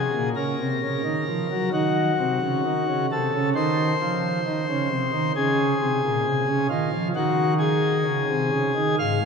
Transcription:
0.00 0.29 G#4 medium
0.14 0.33 A#2 medium
0.36 0.55 C#3 medium
0.36 1.69 A#4 loud
0.59 0.78 C3 medium
0.82 1.01 C#3 medium
1.04 1.24 D#3 medium
1.28 1.47 F3 medium
1.51 1.70 F#3 medium
1.73 2.11 D#3 medium
1.73 3.06 F#4 loud
2.19 2.38 C3 medium
2.41 2.61 C#3 medium
2.65 2.84 D#3 medium
2.88 3.07 C#3 medium
3.12 3.30 C3 medium
3.12 3.49 A4 medium
3.34 3.53 C#3 medium
3.55 3.93 D#3 medium
3.55 5.32 C5 loud
4.02 4.39 F3 medium
4.46 4.65 D#3 medium
4.69 4.88 C#3 medium
4.90 5.09 C3 medium
5.12 5.32 D#3 medium
5.35 5.74 C#3 medium
5.35 6.67 G#4 loud
5.82 6.00 C3 medium
6.04 6.23 A#2 medium
6.26 6.45 C3 medium
6.48 6.67 C#3 medium
6.69 6.89 D#3 medium
6.69 7.08 F4 loud
6.93 7.12 F3 medium
7.16 8.03 D#3 medium
7.16 7.54 F#4 loud
7.59 8.95 G#4 loud
8.05 8.25 C#3 medium
8.30 8.50 C3 medium
8.51 8.72 C#3 medium
8.75 8.96 D#3 medium
8.98 9.19 G#2 medium
8.98 9.25 F5 loud
9.22 9.25 A#2 medium

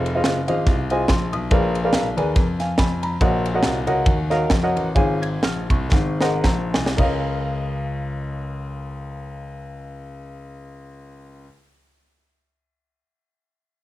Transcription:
0.00 0.18 F1 loud
0.06 ride bell medium
0.15 0.37 F4 medium
0.15 0.37 G#4 medium
0.15 0.37 C5 medium
0.15 0.37 D#5 medium
0.15 0.37 F5 medium
0.24 0.48 F#1 loud
0.24 snare loud
0.24 ride bell medium
0.48 0.64 G#1 medium
0.48 0.76 F4 medium
0.48 0.75 G#4 medium
0.48 0.76 C5 medium
0.48 0.76 D#5 medium
0.48 0.76 F5 loud
0.48 ride bell medium
0.66 1.03 C2 loud
0.66 kick loud
0.66 snare soft
0.66 ride bell medium
0.90 1.10 F4 medium
0.90 1.10 G#4 medium
0.90 1.10 C5 medium
0.90 1.10 D#5 medium
0.90 1.11 G#5 loud
0.90 ride bell medium
1.08 1.30 A#1 medium
1.08 1.31 C6 medium
1.08 kick medium
1.08 snare loud
1.08 ride bell medium
1.33 1.49 B1 medium
1.33 1.73 D#6 medium
1.33 ride bell medium
1.51 1.87 A#1 loud
1.51 2.13 A#2 medium
1.51 1.75 G#4 medium
1.51 1.76 A#4 medium
1.51 1.76 B4 medium
1.51 1.76 D5 medium
1.51 1.76 F5 loud
1.51 kick loud
1.51 ride bell medium
1.75 ride bell medium
1.84 2.06 G#4 medium
1.84 2.06 A#4 medium
1.84 2.06 B4 medium
1.84 2.06 D5 medium
1.84 2.07 F5 loud
1.93 2.18 B1 medium
1.93 snare loud
1.93 ride bell medium
2.17 2.33 D#2 loud
2.17 2.45 G#4 medium
2.17 2.45 A#4 medium
2.17 2.45 B4 medium
2.17 2.45 D5 medium
2.17 2.45 G#5 medium
2.17 ride bell medium
2.36 2.72 F2 loud
2.36 kick loud
2.36 snare soft
2.36 ride bell medium
2.60 2.77 F5 medium
2.60 2.77 G#5 medium
2.60 snare soft
2.60 ride bell medium
2.78 3.15 F2 loud
2.78 3.00 G#5 medium
2.78 3.01 B5 medium
2.78 kick loud
2.78 snare loud
2.78 ride bell medium
3.03 3.43 A#5 medium
3.03 3.20 B5 medium
3.03 ride bell medium
3.21 3.57 A#1 loud
3.21 3.84 A#2 medium
3.21 3.45 F#4 medium
3.21 3.45 A#4 medium
3.21 3.45 C#5 medium
3.21 3.46 D#5 medium
3.21 3.45 F#5 loud
3.21 kick loud
3.21 ride bell medium
3.46 ride bell medium
3.54 3.76 F#4 medium
3.54 3.76 A#4 medium
3.54 3.76 C#5 medium
3.54 3.77 D#5 medium
3.54 3.77 F#5 loud
3.63 3.84 C2 loud
3.63 snare loud
3.63 ride bell medium
3.87 4.04 C#2 medium
3.87 4.15 F#4 medium
3.87 4.15 A#4 medium
3.87 4.15 C#5 medium
3.87 4.16 D#5 medium
3.87 4.16 F#5 loud
3.87 ride bell medium
4.06 4.44 D#2 loud
4.06 kick loud
4.06 ride bell medium
4.30 4.51 F#4 medium
4.30 4.51 A#4 medium
4.30 4.51 C#5 medium
4.30 4.51 D#5 medium
4.30 4.51 F5 loud
4.30 snare soft
4.30 ride bell medium
4.50 4.72 F2 loud
4.50 kick loud
4.50 snare loud
4.50 ride bell medium
4.63 4.86 F#4 medium
4.63 4.86 A#4 medium
4.63 4.87 C#5 medium
4.63 4.87 D#5 medium
4.63 4.87 F#5 loud
4.76 4.93 A1 medium
4.76 ride bell medium
4.95 5.36 G#1 loud
4.95 5.66 G#2 medium
4.95 5.22 F4 medium
4.95 5.22 G#4 medium
4.95 5.23 C#5 medium
4.95 5.23 F5 medium
4.95 5.23 G#5 loud
4.95 kick loud
4.95 ride bell medium
5.22 5.42 G#6 medium
5.22 ride bell medium
5.43 5.66 A#1 medium
5.43 5.69 F6 medium
5.43 snare loud
5.43 ride bell medium
5.70 5.92 C2 medium
5.70 6.18 C#6 medium
5.70 kick loud
5.70 ride bell medium
5.92 6.44 G#1 loud
5.92 6.70 G#2 medium
5.92 kick loud
5.92 snare medium
6.20 6.44 G#4 medium
6.20 6.45 A#4 medium
6.20 6.45 C5 medium
6.20 6.45 D#5 medium
6.20 6.45 F#5 loud
6.20 snare medium
6.44 6.74 A#1 loud
6.44 6.73 A#5 medium
6.44 kick medium
6.44 snare loud
6.73 6.95 C2 medium
6.73 7.27 G#5 medium
6.73 snare loud
6.86 snare loud
6.97 11.45 C#2 loud
6.97 11.45 C#2 medium
6.97 11.43 A#4 medium
6.97 11.44 C#5 medium
6.97 11.45 D#5 medium
6.97 kick loud
6.97 crash medium
7.01 11.47 F5 loud

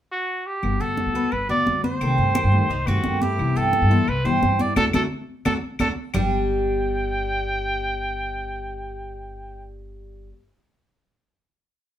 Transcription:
0.12 0.48 F#4 medium
0.46 0.82 G4 medium
0.62 0.80 G1 medium
0.62 0.97 G3 medium
0.62 0.97 B3 medium
0.62 0.98 F#4 medium
0.62 high conga soft
0.62 claves medium
0.80 1.05 D2 medium
0.80 1.14 F#4 medium
0.80 1.34 A4 medium
0.80 high conga soft
0.97 1.14 G3 soft
0.97 1.14 B3 soft
0.97 1.13 F#4 medium
0.97 high conga medium
1.06 1.23 D2 medium
1.14 1.32 B3 medium
1.14 1.31 F#4 medium
1.14 1.48 B4 medium
1.32 1.49 G1 medium
1.32 1.49 B4 medium
1.32 muted steel-string acoustic guitar stroke medium
1.32 high conga soft
1.32 claves medium
1.49 1.66 D2 medium
1.49 1.67 B3 medium
1.49 1.66 F#4 medium
1.49 1.83 F#4 medium
1.49 1.82 D5 loud
1.49 high conga soft
1.67 2.00 D2 medium
1.67 2.00 G3 soft
1.67 2.01 B3 soft
1.67 high conga medium
1.84 2.89 C5 medium
1.84 2.01 C5 medium
1.84 high conga medium
2.01 2.17 C2 loud
2.01 2.35 C3 medium
2.01 2.34 D#3 medium
2.01 2.35 A3 medium
2.01 2.34 C4 medium
2.01 2.35 C4 medium
2.01 2.36 G4 medium
2.01 high conga soft
2.01 claves medium
2.18 2.43 G2 medium
2.18 high conga soft
2.35 2.52 D#3 soft
2.35 2.52 A3 soft
2.35 2.52 C4 soft
2.35 2.69 G4 medium
2.35 2.51 G4 medium
2.35 high conga medium
2.35 claves medium
2.44 2.60 G2 loud
2.52 2.69 D#3 medium
2.52 2.69 A3 medium
2.52 2.69 C4 medium
2.52 2.69 G4 medium
2.52 high conga soft
2.69 2.86 C2 medium
2.69 2.87 D#4 medium
2.69 muted steel-string acoustic guitar stroke medium
2.69 high conga soft
2.86 3.03 G2 medium
2.86 3.02 D#3 medium
2.86 3.03 A3 medium
2.86 3.03 C4 medium
2.86 3.21 C4 medium
2.86 3.23 F#4 medium
2.86 3.03 G4 medium
2.86 high conga soft
2.86 claves medium
3.03 3.37 G2 medium
3.03 3.37 D#3 soft
3.03 3.38 A3 soft
3.03 3.38 C4 soft
3.03 3.38 G4 soft
3.03 high conga medium
3.21 3.55 E4 medium
3.21 3.58 G4 medium
3.21 high conga medium
3.38 3.55 C2 medium
3.38 3.72 C3 medium
3.38 3.72 E3 medium
3.38 3.73 G3 medium
3.38 3.73 B3 medium
3.38 3.73 E4 medium
3.38 high conga soft
3.38 claves medium
3.56 3.80 G2 medium
3.56 3.90 G4 medium
3.56 4.10 A4 medium
3.56 high conga soft
3.73 3.90 E3 soft
3.73 3.90 G3 medium
3.73 3.90 B3 soft
3.73 3.89 E4 soft
3.73 high conga medium
3.82 3.98 G2 loud
3.90 4.06 E3 medium
3.90 4.07 G3 medium
3.90 4.07 B3 medium
3.90 4.07 E4 medium
3.90 4.24 C5 medium
4.08 4.24 C2 medium
4.08 4.27 B4 medium
4.08 muted steel-string acoustic guitar stroke medium
4.08 high conga soft
4.08 claves medium
4.24 4.41 G2 medium
4.24 4.40 E3 medium
4.24 4.41 G3 medium
4.24 4.41 B3 medium
4.24 4.41 E4 medium
4.24 4.58 G4 medium
4.24 4.63 C5 medium
4.24 high conga soft
4.42 4.75 G2 medium
4.42 4.75 E3 soft
4.42 4.76 B3 medium
4.42 high conga medium
4.59 4.76 D5 medium
4.59 high conga medium
4.76 4.89 D2 medium
4.76 4.87 F#3 medium
4.76 4.87 A3 loud
4.76 4.87 D4 medium
4.76 4.88 F#4 medium
4.76 4.85 A4 loud
4.76 4.87 A4 medium
4.76 high conga medium
4.76 claves medium
4.93 5.06 D2 medium
4.93 5.05 F#3 medium
4.93 5.05 A3 loud
4.93 5.04 D4 medium
4.93 5.05 D4 medium
4.93 5.05 F#4 medium
4.93 5.05 A4 medium
4.93 5.02 A4 medium
4.93 high conga medium
4.93 claves medium
5.45 5.58 D2 medium
5.45 5.57 F#3 medium
5.45 5.56 A3 medium
5.45 5.56 D4 loud
5.45 5.56 D4 medium
5.45 5.56 F#4 medium
5.45 5.54 A4 medium
5.45 5.56 A4 medium
5.45 high conga medium
5.45 claves medium
5.79 5.92 D2 medium
5.79 5.91 F#3 medium
5.79 5.91 A3 medium
5.79 5.91 D4 medium
5.79 5.91 F#4 medium
5.79 5.88 A4 medium
5.79 5.91 A4 medium
5.79 high conga medium
5.79 claves medium
6.14 10.29 G1 medium
6.14 10.29 G3 medium
6.14 10.33 G3 medium
6.14 10.35 B3 medium
6.14 10.29 D4 medium
6.14 10.30 G4 medium
6.14 9.67 G5 medium
6.14 low conga medium
6.14 claves medium

